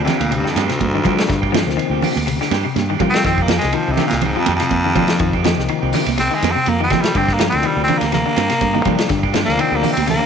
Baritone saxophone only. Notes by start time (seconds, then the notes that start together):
0.04 C3
0.19 A#2
0.35 G2
0.50 F2
0.66 D2
3.09 C4
3.26 C4
3.43 A#3
3.58 G#3
3.74 F3
3.92 C3
4.07 A#2
4.23 G#2
4.38 F2
4.55 F2
6.20 C4
6.35 G#3
6.52 C4
6.69 A#3
6.84 C4
7.01 G3
7.17 C4
7.34 A#3
7.50 C4
7.66 G3
7.84 C4
7.98 A#3
8.14 A#3
9.45 A#3
9.61 C4
9.76 A#3
9.93 C4
10.10 A#3